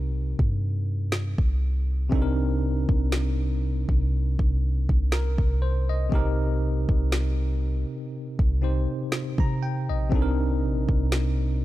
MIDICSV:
0, 0, Header, 1, 4, 480
1, 0, Start_track
1, 0, Key_signature, -3, "minor"
1, 0, Tempo, 1000000
1, 1017, Time_signature, 4, 2, 24, 8
1, 5592, End_track
2, 0, Start_track
2, 0, Title_t, "Tine electric piano"
2, 0, Program_c, 0, 4
2, 0, Control_c, 0, 64, 127
2, 0, Note_on_c, 0, 48, 77
2, 0, Note_on_c, 0, 60, 72
2, 0, Note_on_c, 0, 63, 72
2, 0, Note_on_c, 0, 67, 69
2, 0, Note_on_c, 0, 70, 86
2, 991, Note_off_c, 0, 48, 0
2, 995, Note_off_c, 0, 60, 0
2, 999, Note_off_c, 0, 63, 0
2, 1001, Note_off_c, 0, 67, 0
2, 1005, Note_on_c, 0, 48, 82
2, 1006, Note_off_c, 0, 70, 0
2, 1013, Note_on_c, 0, 60, 75
2, 1019, Note_on_c, 0, 62, 73
2, 1023, Control_c, 0, 64, 0
2, 1026, Note_on_c, 0, 63, 75
2, 1033, Note_on_c, 0, 69, 71
2, 1059, Note_off_c, 0, 69, 0
2, 1065, Note_on_c, 0, 70, 86
2, 1120, Control_c, 0, 64, 127
2, 2222, Note_off_c, 0, 70, 0
2, 2458, Note_on_c, 0, 70, 70
2, 2686, Note_off_c, 0, 70, 0
2, 2697, Note_on_c, 0, 72, 70
2, 2820, Note_off_c, 0, 72, 0
2, 2829, Note_on_c, 0, 75, 73
2, 2912, Note_off_c, 0, 48, 0
2, 2916, Note_off_c, 0, 60, 0
2, 2919, Note_off_c, 0, 62, 0
2, 2922, Note_off_c, 0, 63, 0
2, 2925, Note_on_c, 0, 48, 79
2, 2931, Note_on_c, 0, 58, 56
2, 2938, Note_on_c, 0, 63, 74
2, 2944, Control_c, 0, 64, 0
2, 2946, Note_on_c, 0, 67, 73
2, 2953, Note_on_c, 0, 70, 92
2, 2963, Note_on_c, 0, 60, 72
2, 2968, Note_off_c, 0, 58, 0
2, 3025, Control_c, 0, 64, 127
2, 3056, Note_off_c, 0, 75, 0
2, 4112, Note_off_c, 0, 48, 0
2, 4119, Note_off_c, 0, 63, 0
2, 4122, Note_off_c, 0, 67, 0
2, 4126, Note_off_c, 0, 70, 0
2, 4131, Note_off_c, 0, 60, 0
2, 4133, Note_on_c, 0, 48, 55
2, 4137, Note_on_c, 0, 60, 52
2, 4141, Note_on_c, 0, 63, 53
2, 4143, Note_on_c, 0, 67, 50
2, 4148, Note_on_c, 0, 72, 65
2, 4511, Note_on_c, 0, 82, 66
2, 4614, Note_off_c, 0, 82, 0
2, 4620, Note_on_c, 0, 79, 70
2, 4742, Note_off_c, 0, 79, 0
2, 4749, Note_on_c, 0, 75, 68
2, 4840, Note_off_c, 0, 48, 0
2, 4846, Note_on_c, 0, 48, 80
2, 4847, Note_off_c, 0, 60, 0
2, 4852, Note_on_c, 0, 60, 75
2, 4859, Note_off_c, 0, 63, 0
2, 4860, Note_off_c, 0, 67, 0
2, 4861, Note_on_c, 0, 62, 73
2, 4862, Note_off_c, 0, 72, 0
2, 4864, Control_c, 0, 64, 0
2, 4868, Note_on_c, 0, 63, 75
2, 4874, Note_on_c, 0, 69, 66
2, 4899, Note_off_c, 0, 69, 0
2, 4906, Note_on_c, 0, 70, 88
2, 4955, Control_c, 0, 64, 127
2, 4976, Note_off_c, 0, 75, 0
2, 5592, Note_off_c, 0, 48, 0
2, 5592, Note_off_c, 0, 60, 0
2, 5592, Note_off_c, 0, 62, 0
2, 5592, Note_off_c, 0, 63, 0
2, 5592, Note_off_c, 0, 70, 0
2, 5592, End_track
3, 0, Start_track
3, 0, Title_t, "808-style bass"
3, 0, Program_c, 1, 38
3, 0, Note_on_c, 1, 36, 105
3, 168, Note_off_c, 1, 36, 0
3, 190, Note_on_c, 1, 43, 100
3, 649, Note_off_c, 1, 43, 0
3, 666, Note_on_c, 1, 36, 101
3, 1003, Note_off_c, 1, 36, 0
3, 1019, Note_on_c, 1, 36, 106
3, 1373, Note_off_c, 1, 36, 0
3, 1388, Note_on_c, 1, 36, 103
3, 1848, Note_off_c, 1, 36, 0
3, 1867, Note_on_c, 1, 36, 101
3, 2097, Note_off_c, 1, 36, 0
3, 2109, Note_on_c, 1, 36, 96
3, 2338, Note_off_c, 1, 36, 0
3, 2349, Note_on_c, 1, 36, 100
3, 2578, Note_off_c, 1, 36, 0
3, 2585, Note_on_c, 1, 36, 110
3, 2922, Note_off_c, 1, 36, 0
3, 2938, Note_on_c, 1, 36, 113
3, 3293, Note_off_c, 1, 36, 0
3, 3308, Note_on_c, 1, 36, 108
3, 3768, Note_off_c, 1, 36, 0
3, 4029, Note_on_c, 1, 36, 98
3, 4258, Note_off_c, 1, 36, 0
3, 4505, Note_on_c, 1, 48, 104
3, 4747, Note_on_c, 1, 34, 99
3, 4754, Note_off_c, 1, 48, 0
3, 4852, Note_off_c, 1, 34, 0
3, 4859, Note_on_c, 1, 36, 101
3, 5099, Note_on_c, 1, 34, 97
3, 5106, Note_off_c, 1, 36, 0
3, 5221, Note_off_c, 1, 34, 0
3, 5227, Note_on_c, 1, 36, 106
3, 5592, Note_off_c, 1, 36, 0
3, 5592, End_track
4, 0, Start_track
4, 0, Title_t, "Drums"
4, 188, Note_on_c, 9, 36, 98
4, 236, Note_off_c, 9, 36, 0
4, 538, Note_on_c, 9, 38, 117
4, 586, Note_off_c, 9, 38, 0
4, 664, Note_on_c, 9, 36, 95
4, 712, Note_off_c, 9, 36, 0
4, 1018, Note_on_c, 9, 36, 124
4, 1066, Note_off_c, 9, 36, 0
4, 1386, Note_on_c, 9, 36, 93
4, 1434, Note_off_c, 9, 36, 0
4, 1499, Note_on_c, 9, 38, 112
4, 1547, Note_off_c, 9, 38, 0
4, 1866, Note_on_c, 9, 36, 91
4, 1914, Note_off_c, 9, 36, 0
4, 2108, Note_on_c, 9, 36, 92
4, 2156, Note_off_c, 9, 36, 0
4, 2348, Note_on_c, 9, 36, 93
4, 2396, Note_off_c, 9, 36, 0
4, 2458, Note_on_c, 9, 38, 117
4, 2506, Note_off_c, 9, 38, 0
4, 2584, Note_on_c, 9, 36, 88
4, 2632, Note_off_c, 9, 36, 0
4, 2938, Note_on_c, 9, 36, 121
4, 2986, Note_off_c, 9, 36, 0
4, 3306, Note_on_c, 9, 36, 96
4, 3354, Note_off_c, 9, 36, 0
4, 3419, Note_on_c, 9, 38, 118
4, 3467, Note_off_c, 9, 38, 0
4, 4028, Note_on_c, 9, 36, 96
4, 4076, Note_off_c, 9, 36, 0
4, 4378, Note_on_c, 9, 38, 114
4, 4426, Note_off_c, 9, 38, 0
4, 4504, Note_on_c, 9, 36, 89
4, 4552, Note_off_c, 9, 36, 0
4, 4857, Note_on_c, 9, 36, 123
4, 4905, Note_off_c, 9, 36, 0
4, 5225, Note_on_c, 9, 36, 89
4, 5273, Note_off_c, 9, 36, 0
4, 5338, Note_on_c, 9, 38, 119
4, 5386, Note_off_c, 9, 38, 0
4, 5592, End_track
0, 0, End_of_file